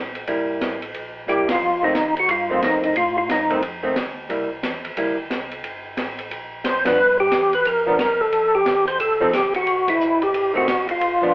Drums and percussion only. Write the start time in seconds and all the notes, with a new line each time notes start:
0.15 ride
0.27 ride
0.61 snare, hi-hat pedal, ride
0.82 ride
0.94 ride
1.28 hi-hat pedal
1.49 snare, ride
1.95 snare, hi-hat pedal, ride
2.17 ride
2.29 ride
2.62 snare, hi-hat pedal, ride
2.84 ride
2.96 ride
3.29 snare, hi-hat pedal, ride
3.50 ride
3.62 ride
3.96 snare, hi-hat pedal, ride
4.30 ride
4.63 snare, hi-hat pedal, ride
4.85 ride
4.97 ride
5.30 snare, hi-hat pedal, ride
5.52 ride
5.64 ride
5.97 snare, hi-hat pedal, ride
6.19 ride
6.31 ride
6.64 snare, hi-hat pedal, ride
6.85 snare, ride
7.31 snare, hi-hat pedal, ride
7.53 ride
7.65 ride
7.99 snare, hi-hat pedal, ride
8.32 ride
8.66 snare, hi-hat pedal, ride
8.88 ride
9.00 ride
9.33 snare, hi-hat pedal, ride
9.54 ride
9.67 ride
9.88 kick, ride
10.01 hi-hat pedal
10.22 ride
10.34 ride
10.68 snare, hi-hat pedal, ride
10.89 ride
11.01 ride